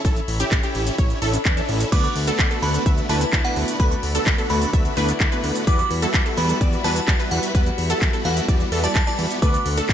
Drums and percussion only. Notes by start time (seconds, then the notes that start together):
0.05 kick, closed hi-hat, cabasa
0.16 closed hi-hat, cabasa
0.28 open hi-hat
0.40 closed hi-hat, cabasa
0.51 kick, clap, closed hi-hat, cabasa
0.63 closed hi-hat, cabasa
0.75 open hi-hat
0.87 closed hi-hat, cabasa
0.98 kick, closed hi-hat, cabasa
1.10 closed hi-hat, cabasa
1.22 open hi-hat
1.34 closed hi-hat, cabasa
1.45 kick, clap, closed hi-hat, cabasa
1.57 closed hi-hat, cabasa
1.69 open hi-hat
1.81 closed hi-hat, cabasa
1.92 kick, closed hi-hat, crash, cabasa
2.04 closed hi-hat, cabasa
2.16 open hi-hat
2.27 closed hi-hat, cabasa
2.39 kick, clap, closed hi-hat, cabasa
2.51 closed hi-hat, cabasa
2.63 open hi-hat
2.74 closed hi-hat, cabasa
2.86 kick, closed hi-hat, cabasa
2.98 closed hi-hat, cabasa
3.09 open hi-hat
3.21 closed hi-hat, cabasa
3.33 kick, clap, closed hi-hat, cabasa
3.45 closed hi-hat, cabasa
3.56 open hi-hat
3.68 closed hi-hat, cabasa
3.80 kick, closed hi-hat, cabasa
3.91 closed hi-hat, cabasa
4.03 open hi-hat
4.15 closed hi-hat, cabasa
4.26 kick, clap, closed hi-hat, cabasa
4.38 closed hi-hat, cabasa
4.50 open hi-hat
4.62 closed hi-hat, cabasa
4.73 kick, closed hi-hat, cabasa
4.85 closed hi-hat, cabasa
4.97 open hi-hat
5.09 closed hi-hat, cabasa
5.20 kick, clap, closed hi-hat, cabasa
5.32 closed hi-hat, cabasa
5.44 open hi-hat
5.56 closed hi-hat, cabasa
5.67 kick, closed hi-hat, cabasa
5.79 closed hi-hat, cabasa
5.91 open hi-hat
6.02 closed hi-hat, cabasa
6.14 kick, clap, closed hi-hat, cabasa
6.26 closed hi-hat, cabasa
6.38 open hi-hat
6.49 closed hi-hat, cabasa
6.61 kick, closed hi-hat, cabasa
6.73 closed hi-hat, cabasa
6.84 open hi-hat
6.96 closed hi-hat, cabasa
7.08 kick, clap, closed hi-hat, cabasa
7.20 closed hi-hat, cabasa
7.31 open hi-hat
7.43 closed hi-hat, cabasa
7.55 kick, closed hi-hat, cabasa
7.66 closed hi-hat, cabasa
7.78 open hi-hat
7.90 closed hi-hat, cabasa
8.02 kick, clap, closed hi-hat, cabasa
8.13 closed hi-hat, cabasa
8.25 open hi-hat
8.37 closed hi-hat, cabasa
8.48 kick, closed hi-hat, cabasa
8.60 closed hi-hat, cabasa
8.72 open hi-hat
8.84 closed hi-hat, cabasa
8.95 kick, clap, closed hi-hat, cabasa
9.07 closed hi-hat, cabasa
9.19 open hi-hat
9.31 closed hi-hat, cabasa
9.42 kick, closed hi-hat, cabasa
9.54 closed hi-hat, cabasa
9.66 open hi-hat
9.78 closed hi-hat, cabasa
9.89 kick, clap, closed hi-hat, cabasa